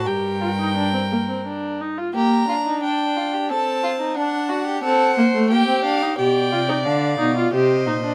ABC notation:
X:1
M:3/4
L:1/16
Q:1/4=88
K:Gm
V:1 name="Violin"
g8- g2 z2 | b4 g4 a4 | ^f4 f4 g2 =f2 | g4 f4 e4 |]
V:2 name="Violin"
B8- B2 z2 | G2 F E D2 F G A2 F E | D2 ^F G A2 c2 G4 | d8 c4 |]
V:3 name="Viola"
G2 F E D C B, C D2 E F | B,2 D6 C4 | D4 C2 B, A, B, C D E | G2 F E D2 E F G2 E D |]
V:4 name="Cello" clef=bass
G,,8- G,,2 z2 | z12 | z12 | =B,,2 C,2 D,2 B,,2 C,2 _B,,2 |]